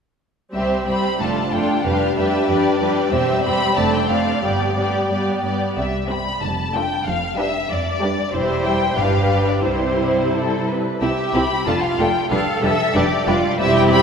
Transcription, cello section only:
0.55 0.63 C2 soft
0.88 0.95 C2 soft
1.20 1.28 F2 soft
1.53 1.61 F2 soft
1.84 1.92 F2 soft
2.16 2.24 F2 soft
2.48 2.56 F2 medium
2.80 2.88 F2 soft
3.12 3.20 E2 medium
3.44 3.52 E2 soft
3.77 3.85 F2 soft
4.10 4.18 F2 soft
4.43 4.51 G2 soft
4.76 4.84 G2 soft
5.10 5.18 G2 soft
5.43 5.51 G2 soft
5.77 6.29 C3 soft
6.42 6.93 F2 medium
7.06 7.56 F2 medium
7.70 8.20 F2 medium
8.33 8.94 E2 soft
8.97 9.65 G2 soft
9.65 10.79 C3 soft
11.01 11.63 G4 medium
11.67 12.31 F4 medium
12.32 12.95 A4 medium
12.96 13.28 G4 medium
13.28 13.59 F4 medium
13.60 14.02 G4 medium

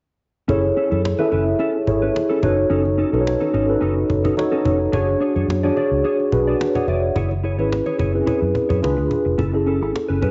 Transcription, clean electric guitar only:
0.48 0.65 C#4 medium
0.48 0.63 E4 medium
0.48 0.62 A4 medium
0.64 muted clean electric guitar stroke soft
0.77 0.90 C#4 medium
0.77 0.90 E4 medium
0.77 0.90 A4 medium
0.91 1.03 C#4 medium
0.91 1.03 E4 medium
0.91 1.02 A4 medium
1.04 muted clean electric guitar stroke soft
1.19 1.30 C#4 medium
1.19 1.30 E4 medium
1.19 1.30 B4 medium
1.31 1.48 C#4 medium
1.31 1.46 E4 medium
1.31 1.46 B4 medium
1.46 muted clean electric guitar stroke soft
1.59 1.76 C#4 medium
1.59 1.74 E4 medium
1.59 1.73 A4 medium
1.75 muted clean electric guitar stroke soft
1.87 muted clean electric guitar stroke soft
2.02 2.13 C#4 soft
2.02 2.14 E4 soft
2.02 2.13 B4 medium
2.15 muted clean electric guitar stroke soft
2.29 2.42 C#4 medium
2.29 2.43 E4 medium
2.29 2.43 A4 medium
2.43 2.56 C#4 medium
2.43 2.56 D#4 medium
2.43 2.56 B4 medium
2.57 muted clean electric guitar stroke soft
2.70 2.87 C#4 medium
2.70 2.85 D#4 medium
2.70 2.84 A4 medium
2.85 muted clean electric guitar stroke soft
2.98 3.11 C#4 medium
2.98 3.11 D#4 medium
2.98 3.11 A4 medium
3.12 3.24 C#4 soft
3.12 3.24 D#4 medium
3.12 3.24 A4 medium
3.25 muted clean electric guitar stroke soft
3.40 3.52 C#4 medium
3.40 3.52 D#4 medium
3.40 3.52 A4 medium
3.53 3.70 C#4 medium
3.53 3.68 D#4 medium
3.53 3.67 A4 medium
3.68 muted clean electric guitar stroke soft
3.81 3.98 C#4 medium
3.81 3.96 D#4 medium
3.81 3.95 A4 medium
3.97 muted clean electric guitar stroke soft
4.09 muted clean electric guitar stroke soft
4.24 4.36 C#4 soft
4.24 4.36 D#4 medium
4.24 4.36 A4 medium
4.37 muted clean electric guitar stroke soft
4.51 4.63 C#4 medium
4.51 4.64 D#4 medium
4.51 4.65 A4 medium
4.65 4.78 C#4 medium
4.65 4.78 D#4 medium
4.65 4.79 A4 medium
4.80 muted clean electric guitar stroke medium
4.92 5.09 D4 medium
4.92 5.08 G#4 medium
4.92 5.07 C#5 medium
5.08 muted clean electric guitar stroke soft
5.20 5.34 D4 medium
5.20 5.34 G#4 medium
5.20 5.34 C#5 medium
5.36 5.47 D4 soft
5.36 5.47 G#4 medium
5.36 5.47 C#5 medium
5.49 muted clean electric guitar stroke soft
5.63 5.75 D4 medium
5.63 5.75 G#4 medium
5.63 5.75 D5 medium
5.76 5.93 D4 medium
5.76 5.91 G#4 medium
5.76 5.91 D5 medium
5.92 muted clean electric guitar stroke soft
6.04 6.21 D4 medium
6.04 6.19 G#4 medium
6.04 6.18 C#5 medium
6.19 muted clean electric guitar stroke soft
6.32 muted clean electric guitar stroke soft
6.48 6.59 D4 soft
6.48 6.59 G#4 medium
6.48 6.58 D5 medium
6.61 muted clean electric guitar stroke soft
6.75 6.87 D4 medium
6.75 6.87 G#4 medium
6.75 6.89 C#5 medium
6.88 7.01 D4 medium
6.88 7.01 G#4 medium
6.88 7.01 D5 medium
7.03 muted clean electric guitar stroke soft
7.16 7.32 E4 medium
7.16 7.31 G#4 medium
7.16 7.30 C#5 medium
7.31 muted clean electric guitar stroke soft
7.44 7.56 E4 medium
7.44 7.57 G#4 medium
7.44 7.57 C#5 medium
7.59 7.70 E4 medium
7.59 7.70 G#4 medium
7.59 7.70 C#5 medium
7.71 muted clean electric guitar stroke soft
7.86 7.98 E4 soft
7.86 7.98 G#4 medium
7.86 7.97 C#5 medium
7.99 8.15 E4 medium
7.99 8.14 G#4 medium
7.99 8.13 C#5 medium
8.14 muted clean electric guitar stroke soft
8.26 8.43 E4 medium
8.26 8.41 G#4 medium
8.26 8.40 C#5 medium
8.42 muted clean electric guitar stroke soft
8.54 muted clean electric guitar stroke soft
8.69 8.81 E4 soft
8.69 8.81 G#4 medium
8.69 8.81 C#5 medium
8.82 muted clean electric guitar stroke soft
8.97 muted clean electric guitar stroke soft
9.25 muted clean electric guitar stroke soft
9.38 9.55 C#4 medium
9.38 9.53 E4 medium
9.38 9.52 A4 medium
9.53 muted clean electric guitar stroke soft
9.66 9.79 C#4 medium
9.66 9.80 E4 medium
9.66 9.80 A4 medium
9.81 9.93 C#4 soft
9.81 9.93 E4 medium
9.81 9.92 A4 medium
9.94 muted clean electric guitar stroke soft
10.08 10.20 C#4 soft
10.08 10.20 E4 soft
10.08 10.20 B4 medium
10.21 10.31 C#4 medium
10.21 10.31 E4 medium
10.21 10.31 B4 medium

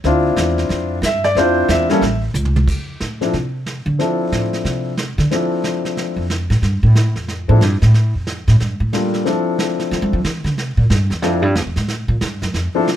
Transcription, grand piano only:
0.05 0.96 C4 medium
0.05 0.97 D4 medium
0.05 0.96 E4 medium
0.05 0.97 F4 medium
1.05 1.25 E5 medium
1.24 1.36 D5 medium
1.36 1.86 C4 medium
1.36 1.86 D4 medium
1.36 1.86 E4 medium
1.36 1.87 F4 medium
1.36 1.68 C5 medium
1.71 2.20 E5 medium
1.90 2.01 G3 medium
1.90 2.01 A#3 medium
1.90 2.01 C#4 medium
1.90 2.02 A4 medium
3.21 3.32 F3 soft
3.21 3.32 C4 soft
3.21 3.33 D4 soft
3.21 3.33 E4 soft
3.21 3.33 A4 medium
3.99 4.90 F3 soft
3.99 4.91 C4 soft
3.99 4.91 D4 soft
3.99 4.91 E4 soft
3.99 4.91 A4 medium
5.31 6.22 F3 soft
5.31 6.23 C4 soft
5.31 6.23 D4 soft
5.31 6.23 E4 soft
5.31 6.23 A4 medium
7.48 7.60 F3 medium
7.48 7.60 C4 medium
7.48 7.60 D4 soft
7.48 7.61 E4 medium
7.48 7.61 A4 medium
8.93 9.26 G3 soft
8.93 9.26 A#3 soft
8.93 9.24 D4 soft
8.93 9.26 F4 soft
8.93 9.25 A4 soft
9.25 10.17 F3 medium
9.25 10.17 C4 medium
9.25 10.17 D4 medium
9.25 10.17 E4 soft
9.25 10.18 A4 medium
11.23 11.41 F3 medium
11.23 11.42 C4 soft
11.23 11.42 D4 soft
11.23 11.42 E4 soft
11.23 11.42 A4 medium
12.75 12.86 F3 medium
12.75 12.86 C4 medium
12.75 12.86 D4 medium
12.75 12.86 E4 medium
12.75 12.87 A4 medium

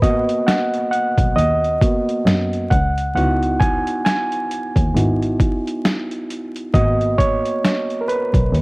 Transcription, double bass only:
0.00 0.16 G#1 loud
1.18 1.36 B1 medium
1.37 1.74 D#2 loud
2.26 2.64 F#2 loud
2.71 3.09 C#2 loud
3.15 3.74 C#2 loud
4.76 4.92 D#2 medium
4.95 5.33 G#1 loud
6.74 7.33 G#1 loud
8.34 8.50 B1 medium
8.54 8.62 D#2 loud

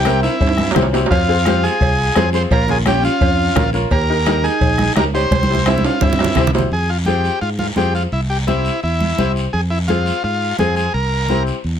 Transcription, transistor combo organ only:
0.00 0.20 G4 medium
0.23 0.72 E4 medium
1.11 1.65 F4 medium
1.64 2.30 G#4 medium
2.35 2.43 C5 loud
2.52 2.70 A#4 medium
2.71 2.78 G#4 medium
2.88 3.03 G4 medium
3.05 3.70 F4 medium
3.92 4.46 A#4 medium
4.44 4.93 G#4 medium
4.97 5.05 A#4 medium
5.15 5.69 C5 loud
5.68 5.84 E4 medium
5.85 6.03 F4 medium
6.02 6.51 E4 medium
6.73 6.91 G#4 medium
6.90 6.98 F4 medium
7.06 7.39 G4 medium
7.41 7.50 F4 medium
7.59 7.67 F4 medium
7.77 7.94 G4 medium
7.95 8.03 F4 medium
8.13 8.21 E4 medium
8.30 8.38 G4 medium
8.48 8.80 E4 medium
8.83 9.32 E4 medium
9.53 9.61 G#4 medium
9.70 9.79 E4 medium
9.88 10.23 F4 medium
10.24 10.57 F4 medium
10.59 10.75 G#4 medium
10.76 10.93 G#4 medium
10.94 11.43 A#4 medium

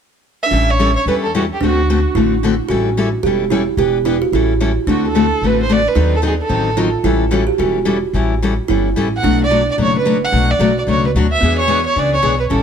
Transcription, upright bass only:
0.51 0.95 A1 medium
1.06 1.50 E2 medium
1.61 2.04 D2 medium
2.15 2.59 A1 medium
2.70 3.13 A1 medium
3.23 3.67 E1 medium
3.77 4.21 E1 medium
4.32 4.76 A1 medium
4.87 5.31 D2 medium
5.42 5.86 A1 medium
5.96 6.40 D#2 medium
6.50 6.94 A1 medium
7.04 7.48 A1 medium
7.59 8.03 E1 medium
8.13 8.58 A1 medium
8.69 8.92 G1 medium
8.97 9.20 A1 medium
9.24 9.68 B1 medium
9.78 10.22 F#1 medium
10.32 10.54 B1 medium
10.59 10.83 B1 medium
10.87 11.11 C#2 medium
11.15 11.38 D2 medium
11.42 11.86 E2 medium
11.96 12.19 C#2 medium
12.23 12.46 B1 medium
12.51 12.63 A1 medium

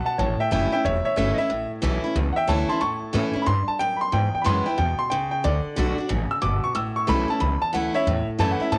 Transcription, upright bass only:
0.19 0.39 A1 loud
0.40 muted upright bass stroke medium
0.52 0.72 F#1 loud
0.73 muted upright bass stroke medium
0.85 1.05 E1 loud
1.06 muted upright bass stroke medium
1.17 1.38 G1 medium
1.51 1.70 A1 loud
1.72 muted upright bass stroke soft
1.83 2.03 B1 loud
2.04 muted upright bass stroke medium
2.15 2.36 C#2 loud
2.37 muted upright bass stroke medium
2.48 2.69 D2 medium
2.81 3.01 E2 loud
3.03 muted upright bass stroke soft
3.14 3.35 A2 loud
3.35 muted upright bass stroke medium
3.47 3.67 G2 loud
3.68 muted upright bass stroke medium
3.80 4.00 A2 medium
4.01 muted upright bass stroke soft
4.13 4.34 G#2 loud
4.34 muted upright bass stroke medium
4.46 4.66 F#2 loud
4.79 4.99 E2 medium
5.00 muted upright bass stroke medium
5.11 5.31 C#2 medium
5.33 muted upright bass stroke soft
5.45 5.65 D2 loud
5.66 muted upright bass stroke medium
5.78 5.98 B1 loud
5.99 muted upright bass stroke medium
6.10 6.31 A1 loud
6.31 muted upright bass stroke medium
6.43 6.63 G1 medium
6.65 muted upright bass stroke medium
6.76 6.96 A1 loud
6.98 muted upright bass stroke soft
7.09 7.29 B1 loud
7.30 muted upright bass stroke medium
7.41 7.62 C#2 medium
7.62 muted upright bass stroke medium
7.74 7.94 D2 medium
8.07 8.27 E2 loud
8.28 muted upright bass stroke medium
8.39 8.60 F#2 loud
8.60 muted upright bass stroke medium
8.72 8.78 A2 loud

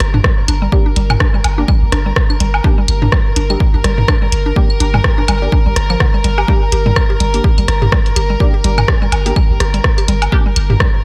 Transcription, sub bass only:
0.00 0.20 G1 medium
0.48 0.68 G1 loud
0.96 1.16 G1 loud
1.44 1.64 G1 medium
1.82 1.90 G1 loud
1.92 2.12 G1 medium
2.40 2.60 G1 loud
2.88 3.08 G1 loud
3.36 3.56 G1 medium
3.74 3.82 G1 loud
3.84 4.04 G1 medium
4.32 4.52 G1 loud
4.80 5.00 G1 loud
5.28 5.48 G1 medium
5.66 5.74 G1 loud
5.76 5.96 G1 medium
6.24 6.44 G1 medium
6.72 6.92 G1 loud
7.20 7.40 G1 medium
7.58 7.66 G1 loud
7.68 7.88 G1 medium
8.16 8.36 G1 loud
8.64 8.84 G1 loud
9.12 9.32 G1 medium
9.50 9.58 G1 loud
9.60 9.80 G1 medium
10.08 10.28 G1 loud
10.56 10.76 G1 loud

